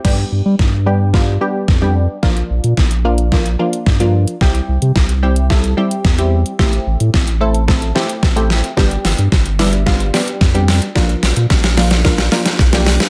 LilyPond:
<<
  \new Staff \with { instrumentName = "Synth stab" } { \time 4/4 \key g \mixolydian \tempo 4 = 110 <g b d' g'>4~ <g b d' g'>16 r16 <g b d' g'>8 <g b d' f'>8 <g b d' g'>8. <g b d' g'>8. | <f bes d' f'>4~ <f bes d' f'>16 r16 <f bes d' f'>8 <f bes d' f'>8 <f bes d' f'>8. <f bes d' f'>8. | <g c' e' g'>4~ <g c' e' g'>16 r16 <g c' e' g'>8 <g c' e' a'>8 <g c' e' g'>8. <g c' e' g'>8. | <a c' e' g'>4~ <a c' e' g'>16 r16 <a c' e' a'>8 <a c' e' a'>8 <a c' e' g'>8. <a c' e' g'>8. |
<g b d' g'>4~ <g b d' g'>16 r16 <g b d' e'>8 <g b d' f'>8 <g b d' g'>8. <g b d' g'>8. | <f bes d' f'>4~ <f bes d' f'>16 r16 <f bes d' f'>8 <f bes d' f'>8 <f bes d' f'>8. <f bes d' g'>8. | }
  \new Staff \with { instrumentName = "Sub bass" } { \clef bass \time 4/4 \key g \mixolydian g,8 g,16 g16 g,2 f,4 | bes,,8 bes,,16 bes,16 bes,,2 g,4 | c,8 c,16 c16 c,2 e,4 | a,,8 a,,16 a,16 a,,2 a,,4 |
g,,8 g,,16 g,16 g,,2 f,4 | bes,,8 bes,,16 bes,16 bes,,2 b,,4 | }
  \new DrumStaff \with { instrumentName = "Drums" } \drummode { \time 4/4 <cymc bd sn>4 <bd sn>4 <bd sn>4 <bd sn>4 | <bd sn>16 hh8 hh16 <bd sn>16 hh8 hh16 <bd sn>16 hh8 hh16 <bd sn>16 hh8 hh16 | <bd sn>16 hh8 hh16 <bd sn>16 hh8 hh16 <bd sn>16 hh8 hh16 <bd sn>16 hh8 hh16 | <bd sn>16 hh8 hh16 <bd sn>16 hh8 hh16 <bd sn>16 hh16 sn16 hh16 <bd sn>16 hh16 sn16 hh16 |
<bd sn>16 hh16 <hho sn>16 hh16 <bd sn>16 hh16 <hho sn>16 hh16 <bd sn>16 hh16 <hho sn>16 hh16 <bd sn>16 hh16 <hho sn>16 hh16 | <bd sn>16 hh16 <hho sn>16 hh16 <bd sn>16 <hh sn>16 <hho sn>16 <hh sn>16 <bd sn>16 <hh sn>16 <hho sn>16 <hh sn>16 <bd sn>16 <hh sn>16 <hho sn>16 <hh sn>16 | }
>>